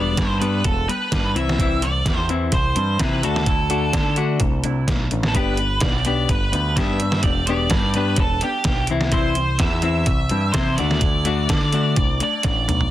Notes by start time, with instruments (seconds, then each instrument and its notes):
Already playing: picked electric bass E1, overdriven electric guitar G3 B3 D4, lead electric guitar D5
0.17 picked electric bass G2, clean electric guitar G3 B3 D4 G4, overdriven electric guitar G3 B3, kick, snare, closed hi-hat
0.40 overdriven electric guitar G3 B3 D4, lead electric guitar B4, closed hi-hat
0.64 picked electric bass E1, overdriven electric guitar G3 B3, lead electric guitar A4, kick, closed hi-hat
0.88 overdriven electric guitar G3 B3, clean electric guitar G3 B3 D4 G4, lead electric guitar B4, closed hi-hat
1.12 picked electric bass G2, overdriven electric guitar G3 B3, kick, snare, closed hi-hat
1.35 picked electric bass C2, overdriven electric guitar E3 C4 E4, lead electric guitar E5, closed hi-hat
1.49 snare
1.58 clean electric guitar E3 G3 E4 G4, overdriven electric guitar E3 C4 E4, kick, closed hi-hat
1.82 overdriven electric guitar E3 C4, lead electric guitar D5, closed hi-hat
2.06 picked electric bass E2, clean electric guitar E3 G3 E4 G4, overdriven electric guitar E3 C4, kick, snare, closed hi-hat
2.29 overdriven electric guitar E3 C4 E4, closed hi-hat
2.52 picked electric bass C2, overdriven electric guitar E3 C4, lead electric guitar C5, kick, closed hi-hat
2.75 picked electric bass G2, overdriven electric guitar E3 C4, clean electric guitar E3 G3 E4 G4, closed hi-hat
2.99 picked electric bass C3, overdriven electric guitar E3 C4 E4, lead electric guitar B4, kick, snare, closed hi-hat
3.23 picked electric bass D2, overdriven electric guitar A3 D4 F#4, lead electric guitar A4, closed hi-hat
3.36 snare
3.46 clean electric guitar F#3 A3 D4 E4, overdriven electric guitar A3 D4, kick, closed hi-hat
3.70 overdriven electric guitar A3 D4 F#4, closed hi-hat
3.93 picked electric bass D3, clean electric guitar F#3 A3 D4 E4, overdriven electric guitar A3 D4, kick, snare, closed hi-hat
4.16 overdriven electric guitar A3 D4 F#4, closed hi-hat
4.40 picked electric bass C2, overdriven electric guitar A3 D4, kick, closed hi-hat
4.63 picked electric bass C2, clean electric guitar F#3 A3 D4 E4, overdriven electric guitar A3 D4, closed hi-hat
4.88 picked electric bass B1, overdriven electric guitar A3 D4, kick, snare, closed hi-hat
5.11 picked electric bass A1, overdriven electric guitar A3 D4, closed hi-hat
5.23 snare
5.28 lead electric guitar A4
5.34 picked electric bass G1, clean electric guitar G3 B3 D4 G4, overdriven electric guitar B3 D4 G4, lead electric guitar B4, kick, closed hi-hat
5.57 overdriven electric guitar B3 D4, closed hi-hat
5.80 picked electric bass B1, clean electric guitar G3 B3 D4 G4, overdriven electric guitar B3 D4, lead electric guitar D5, kick, snare, closed hi-hat
6.05 overdriven electric guitar B3 D4 G4, lead electric guitar D5, closed hi-hat
6.29 picked electric bass G1, overdriven electric guitar B3 D4, lead electric guitar B4, kick, closed hi-hat
6.52 picked electric bass D2, clean electric guitar G3 B3 D4 G4, overdriven electric guitar B3 D4, closed hi-hat
6.76 picked electric bass G2, overdriven electric guitar B3 D4 G4, lead electric guitar E5, kick, snare, closed hi-hat
7.00 overdriven electric guitar B3 D4, closed hi-hat
7.12 snare
7.23 picked electric bass E1, clean electric guitar G3 B3 D4 G4, overdriven electric guitar B3 D4, lead electric guitar D5, kick, closed hi-hat
7.47 overdriven electric guitar B3 D4 G4, lead electric guitar D5, closed hi-hat
7.70 picked electric bass G2, clean electric guitar G3 B3 D4 G4, overdriven electric guitar B3 D4, kick, snare, closed hi-hat
7.94 overdriven electric guitar B3 D4 G4, lead electric guitar B4, closed hi-hat
8.16 picked electric bass E1, overdriven electric guitar B3 D4, lead electric guitar A4, kick, closed hi-hat
8.41 clean electric guitar G3 B3 D4 G4, overdriven electric guitar B3 D4, lead electric guitar G4, closed hi-hat
8.64 picked electric bass B1, overdriven electric guitar B3 D4, kick, snare, closed hi-hat
8.87 picked electric bass C2, overdriven electric guitar E3 C4, closed hi-hat
8.91 overdriven electric guitar E4
9.01 snare
9.12 clean electric guitar E3 G3 E4 G4, overdriven electric guitar E3 C4 E4, lead electric guitar C5, kick, closed hi-hat
9.35 overdriven electric guitar E3 C4, closed hi-hat
9.58 picked electric bass E2, clean electric guitar E3 G3 E4 G4, overdriven electric guitar E3 C4, lead electric guitar E5, kick, snare, closed hi-hat
9.82 overdriven electric guitar E3 C4 E4, lead electric guitar E5, closed hi-hat
10.06 picked electric bass C2, overdriven electric guitar E3 C4, kick, closed hi-hat
10.29 picked electric bass G2, overdriven electric guitar E3 C4, clean electric guitar E3 G3 E4 G4, closed hi-hat
10.52 picked electric bass C3, overdriven electric guitar E3 C4 E4, lead electric guitar C5, kick, snare, closed hi-hat
10.76 picked electric bass D2, overdriven electric guitar A3 D4 F#4, lead electric guitar D5, snare, closed hi-hat
10.91 snare
11.01 clean electric guitar F#3 A3 D4 E4, overdriven electric guitar A3 D4, kick, closed hi-hat
11.25 overdriven electric guitar A3 D4 F#4, closed hi-hat
11.49 picked electric bass D3, clean electric guitar F#3 A3 D4 E4, overdriven electric guitar A3 D4, kick, snare, closed hi-hat
11.73 overdriven electric guitar A3 D4 F#4, closed hi-hat
11.96 picked electric bass C2, overdriven electric guitar A3 D4, kick, closed hi-hat
12.20 clean electric guitar F#3 A3 D4 E4, overdriven electric guitar A3 D4, lead electric guitar D5, closed hi-hat
12.43 picked electric bass A1, overdriven electric guitar A3 D4, lead electric guitar D5, kick, snare, closed hi-hat
12.68 picked electric bass B1, overdriven electric guitar A3 D4, closed hi-hat, mid tom
12.81 floor tom